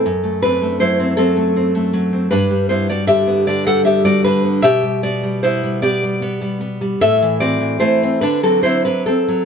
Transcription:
\new Staff \with { instrumentName = "Nylon-string guitar" } { \time 6/8 \key g \major \tempo 4. = 52 << { a'8 <d' b'>8 <e' c''>8 <c' a'>4. | <d' b'>8 <e' c''>16 <fis' d''>16 <g' e''>8 <g' d''>16 <a' fis''>16 <g' e''>16 <fis' d''>16 <d' b'>8 | <g' e''>8 <fis' d''>8 <e' c''>8 <g' d''>4. | <a' e''>8 <fis' d''>8 <e' c''>8 <d' b'>16 <c' a'>16 <e' c''>16 <d' b'>16 <c' a'>8 | } \\ { fis,16 a16 c'16 a16 fis16 c'16 fis16 a16 c'16 a16 fis16 c'16 | g,16 g16 b16 g16 d16 b16 d16 g16 b16 g16 d16 b16 | b,16 g16 b16 g16 b16 g16 b16 g16 b16 g16 b16 g16 | a,16 e16 c'16 e16 a16 c'16 d16 fis16 c'16 fis8 fis16 | } >> }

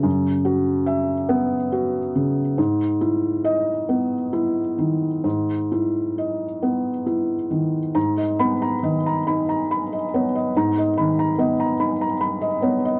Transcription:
<<
  \new Staff \with { instrumentName = "Felt piano" } { \time 6/8 \key gis \minor \tempo 4. = 47 << { r2. | r2. | r2. | ais''16 dis''8 ais''16 dis''16 ais''16 b''16 ais''16 b''16 dis''16 cis''16 dis''16 |
ais''16 dis''16 b''16 ais''16 dis''16 ais''16 b''16 ais''16 b''16 dis''16 cis''16 dis''16 | } \\ { r2. | r4 dis''4 r4 | r2. | r8 b''8 r2 |
r2. | } >> }
  \new Staff \with { instrumentName = "Felt piano" } { \time 6/8 \key gis \minor <fis, cis>8 fis'8 e''8 b8 fis'8 cis8 | gis,8 e'4 b8 e'8 dis8 | gis,8 e'8 dis''8 b8 e'8 dis8 | gis,8 b8 dis8 dis'4 b8 |
gis,8 dis8 b8 dis'4 b8 | }
>>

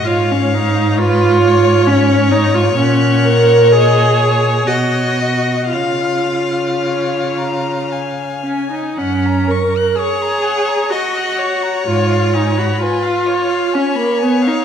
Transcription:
<<
  \new Staff \with { instrumentName = "Violin" } { \time 3/4 \key cis \mixolydian \tempo 4 = 63 eis''4 cis''2 | fis''4 dis''8 cis''8 cis''8 dis''8 | eis''4 cis''8 ais''8 gis''4 | fis''16 ais''16 cis'''16 fis'''16 cis'''16 ais''16 fis''16 ais''16 cis'''16 fis'''16 cis'''16 ais''16 |
cis''16 eis''16 gis''16 b''16 gis''16 eis''16 cis''16 eis''16 gis''16 b''16 gis''16 eis''16 | }
  \new Staff \with { instrumentName = "Violin" } { \time 3/4 \key cis \mixolydian cis''4 b'8 cis''4.~ | cis''2 dis''4 | eis''2~ eis''8 r8 | r4 cis''4 dis''8 cis''8~ |
cis''4 b'8 cis''4. | }
  \new Staff \with { instrumentName = "Viola" } { \time 3/4 \key cis \mixolydian eis'16 cis'16 dis'8 eis'4 cis'8 dis'16 eis'16 | cis'8 ais'8 gis'4 fis'4 | eis'2 r8 cis'16 dis'16 | cis'8 ais'8 gis'4 fis'4 |
eis'8 dis'16 fis'16 eis'4 cis'16 ais16 b16 dis'16 | }
  \new Staff \with { instrumentName = "Cello" } { \clef bass \time 3/4 \key cis \mixolydian gis,2. | ais,2 b,4 | cis2. | fis,4 r2 |
gis,4 r2 | }
>>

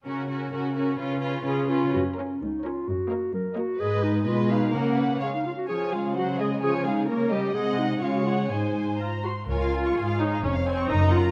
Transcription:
<<
  \new Staff \with { instrumentName = "Violin section" } { \time 2/4 \key fis \major \tempo 4 = 128 ais'8 ais'8 ais'8 ais'8 | b'8 b'8 b'8 b'8 | r8 cis''8 r8 cis''8 | r8 dis''8 r8 dis''8 |
dis''4 dis''8 eis''8 | fis''4 eis''8 r8 | \key des \major gis''8 eis''8 ges''8 ees''8 | aes''8 f''8 des''8 ees''8 |
ges''4 f''8 ges''8 | aes''4 bes''8 c'''8 | bes'4 aes'4 | des''4 bes'4 | }
  \new Staff \with { instrumentName = "Violin section" } { \time 2/4 \key fis \major << { r2 | r2 | r2 | r2 |
r2 | r2 | \key des \major r2 | r2 |
r2 | r2 | des''16 f''16 aes''16 des'''16 aes''16 f''16 des''16 f''16 | des''16 f''16 aes''16 des'''16 bes'16 ees''16 ges''16 bes''16 | } \\ { fis'8 fis'8 fis'8 fis'8 | eis'8 eis'8 eis'8 eis'8 | r8 ais'8 r8 ais'8 | r8 ais'8 r8 ais'8 |
b'4 b'4 | ais'8 b'8 cis''8 r8 | cis''8 gis'8 c''8 aes'8 | des''8 aes'8 bes'8 g'8 |
ees''4 des''4 | c''4. r8 | aes''2~ | aes''4 bes''4 | } >> }
  \new Staff \with { instrumentName = "Clarinet" } { \time 2/4 \key fis \major r2 | r4 gis'8 eis'8 | fis'8 cis'8 dis'8 eis'8 | fis'4 ais'8 fis'8 |
gis'8 dis'8 eis'8 dis'8 | cis'4 r16 dis'16 eis'16 fis'16 | \key des \major gis'8 eis'8 ges'8 aes'8 | aes'8 ees'8 bes'8 g'8 |
aes'8 ees'8 f'16 ges'16 f'8 | ees'4 r4 | r2 | r2 | }
  \new Staff \with { instrumentName = "Viola section" } { \time 2/4 \key fis \major cis'8 cis'8 cis'8 cis'8 | cis'8 cis'8 cis'8 cis'8 | r8 cis'8 r8 cis'8 | r8 ais8 r8 ais8 |
gis4 gis4 | ais4 gis8 r8 | \key des \major eis8 gis8 ges8 aes8 | f8 aes8 bes8 g8 |
aes4 aes4 | aes4 f'8 ges'8 | f'4. ees'8 | des'8 c'8 ees'8 f'8 | }
  \new Staff \with { instrumentName = "Cello section" } { \clef bass \time 2/4 \key fis \major cis4 cis4 | cis4 cis4 | fis,4 cis,4 | fis,4 fis,4 |
gis,4 b,4 | cis4. r8 | \key des \major cis2~ | cis2 |
c4 des4 | aes,4. r8 | des,4 aes,4 | f,4 ges,4 | }
  \new Staff \with { instrumentName = "Double bass section" } { \clef bass \time 2/4 \key fis \major r2 | r2 | r2 | r2 |
r2 | r2 | \key des \major r2 | r2 |
r2 | r2 | des,4 r4 | f,,4 ges,,4 | }
>>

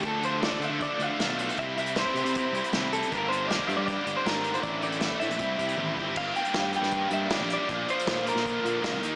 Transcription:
<<
  \new Staff \with { instrumentName = "Clean electric guitar" } { \time 4/4 \key g \dorian \tempo 4 = 157 a'8 c''8 d''8 e''8 d''8 f''4. | e''8 e''8 c''2~ c''8 a'8 | bes'8 c''8 d''8 e''16 d''16 d''8. c''16 bes'8. c''16 | d''8 d''4 e''2 r8 |
f''8 g''4 g''4 e''8 d''8 d''8~ | d''8 c''4 bes'2 r8 | }
  \new Staff \with { instrumentName = "Distorted electric guitar" } { \time 4/4 \key g \dorian <f a d' a'>8 <f a d' a'>8 <f a d' a'>8 <f a d' a'>8 <f a d' a'>8 <f a d' a'>8 <f a d' a'>8 <f a d' a'>8 | <e c' e' g'>8 <e c' e' g'>8 <e c' e' g'>8 <e c' e' g'>8 <e c' e' g'>8 <e c' e' g'>8 <e c' e' g'>8 <e c' e' g'>8 | <bes d' g'>8 <bes d' g'>8 <bes d' g'>8 <bes d' g'>8 <bes d' g'>8 <bes d' g'>8 <bes d' g'>8 <bes d' g'>8 | <e a d' a'>8 <e a d' a'>8 <e a d' a'>8 <e a d' a'>8 <g c' e' g'>8 <g c' e' g'>8 <g c' e' g'>8 <g c' e' g'>8 |
<bes d' g'>8 <d' g'>8 <bes d' g'>8 <d' g'>4. <bes d' g'>8 <d' g'>8 | <f bes d' f'>8 <bes d' f'>8 <f bes d' f'>8 <bes d' f'>4. <f bes d' f'>8 <bes ees' g'>8 | }
  \new Staff \with { instrumentName = "Overdriven electric guitar" } { \clef bass \time 4/4 \key g \dorian <d f a d'>8 <d f a d'>8 <d f a d'>8 <d f a d'>8 <d f a d'>8 <d f a d'>8 <d f a d'>8 <d f a d'>8 | <c g c' e'>8 <c g c' e'>8 <c g c' e'>8 <c g c' e'>8 <c g c' e'>8 <c g c' e'>8 <c g c' e'>8 <c g c' e'>8 | <g, d g bes d'>8 <g, d g bes d'>8 <g, d g bes d'>8 <g, d g bes d'>8 <g, d g bes d'>8 <g, d g bes d'>8 <g, d g bes d'>8 <g, d g bes d'>8 | <a, d e a e'>8 <a, d e a e'>8 <a, d e a e'>8 <a, d e a e'>8 <c g c' e'>8 <c g c' e'>8 <c g c' e'>8 <c g c' e'>8 |
g,8 bes8 g8 d'8 bes8 g8 d'8 g8 | bes,8 f8 d8 bes8 f8 d8 bes8 ees8 | }
  \new Staff \with { instrumentName = "Picked electric bass" } { \clef bass \time 4/4 \key g \dorian d,4. d16 d8 r16 d,16 r16 b,,4 | c,4. c16 c8 r16 c,16 r16 c,4 | g,,4. g,16 g,8 r16 g,,16 r16 gis,,4 | a,,4. a,16 bes,,16 c,8 c,8 a,,8 g,,8 |
g,,8 r8 g,8. g,8. g,8 r16 bes,,8 r16 | bes,,8 r8 bes,8. bes,8. bes,8 r16 c,16 ees,8 | }
  \new DrumStaff \with { instrumentName = "Drums" } \drummode { \time 4/4 <hh bd>8 hh8 <hh sn>16 bd16 hh8 <hh bd>8 hh8 <hh sn>8 hh16 hh16 | <hh bd>8 hh16 hh16 <hh sn>16 bd16 hh16 hh16 <hh bd>8 hh16 hh16 <hh sn>8 hh16 hh16 | <hh bd>8 hh8 <hh sn>16 bd16 hh8 <hh bd>8 hh8 <hh sn>8 hh16 hh16 | <hh bd>8 hh16 hh16 <hh sn>16 bd16 hh16 hh16 <hh bd>8 <hh bd>16 hh16 tommh8 bd8 |
<cymc bd>8 hh16 hh16 <hh bd sn>8 hh16 sn16 <hh bd>8 hh8 <hh bd sn>8 hh8 | <hh bd>8 hh16 hh16 <hh bd sn>8 hh16 sn16 <hh bd>8 hh8 <hh bd sn>8 hh8 | }
>>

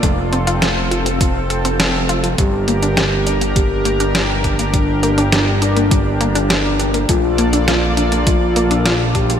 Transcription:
<<
  \new Staff \with { instrumentName = "Analog synth pad" } { \time 4/4 \key g \minor \tempo 4 = 102 <c' f' a'>1 | <d' g' bes'>1~ | <d' g' bes'>1 | <bes f' a' d''>1 | }
  \new Staff \with { instrumentName = "Soft synth lead" } { \time 4/4 \key g \minor r1 | g'2 g'4. d'8~ | d'4 d'2. | f'2 f'4. g'8 | }
  \new Staff \with { instrumentName = "Synth arpeggio sound" } { \time 4/4 \key g \minor a16 r16 c'16 f'16 a'16 r16 f'16 c'16 a16 r16 a'16 c'16 a''16 r16 f'16 f'16 | g16 r16 bes16 d'16 g'16 r16 d'16 bes16 g16 r16 bes16 d'16 g'16 r16 d'16 bes16 | g16 r16 bes16 d'16 g'16 r16 d'16 bes16 g16 r16 bes16 d'16 g'16 r16 d'16 bes16 | a16 r16 bes16 d'16 f'16 r16 d'16 bes16 a16 r16 bes16 d'16 f'16 r16 d'16 bes16 | }
  \new Staff \with { instrumentName = "Analog synth bass" } { \clef bass \time 4/4 \key g \minor f,,1 | g,,1~ | g,,1 | bes,,1 | }
  \new DrumStaff \with { instrumentName = "Drums" } \drummode { \time 4/4 <hh bd>8 hh16 hh16 <hh sn>8 hh16 hh16 <hh bd>8 hh16 hh16 <hh sn>8 hh16 hh16 | <hh bd>8 hh16 hh16 <hh sn>8 hh16 hh16 <hh bd>8 hh16 hh16 <hh sn>8 <hh bd>16 hh16 | <hh bd>8 hh16 hh16 <hh sn>8 hh16 hh16 <hh bd>8 hh16 hh16 <hh sn>8 hh16 hh16 | <hh bd>8 hh16 hh16 <hh sn>8 hh16 hh16 <hh bd>8 hh16 hh16 <hh sn>8 <hh bd>16 hh16 | }
>>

